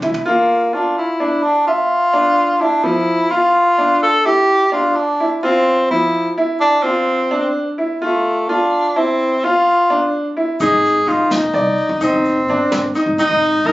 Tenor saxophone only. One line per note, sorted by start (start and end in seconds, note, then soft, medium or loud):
0.27 0.76 A#3 medium
0.74 0.97 D4 medium
0.98 1.44 E4 medium
1.43 1.67 D4 medium
1.67 2.62 F4 loud
2.61 2.86 D4 medium
2.84 3.33 E4 loud
3.31 4.02 F4 medium
4.03 4.27 A4 loud
4.26 4.72 G4 loud
4.73 4.98 F4 medium
4.96 5.32 D4 medium
5.44 5.87 C4 loud
5.91 6.31 E4 medium
6.61 6.84 D4 loud
6.83 7.54 C4 loud
8.02 8.50 A3 medium
8.48 8.98 D4 medium
8.97 9.46 C4 medium
9.45 10.14 F4 loud
10.62 11.10 G#4 loud
11.08 11.33 F4 medium
11.32 12.05 D#4 medium
12.04 12.96 C4 medium
13.19 13.68 D#4 loud
13.67 13.72 A#4 loud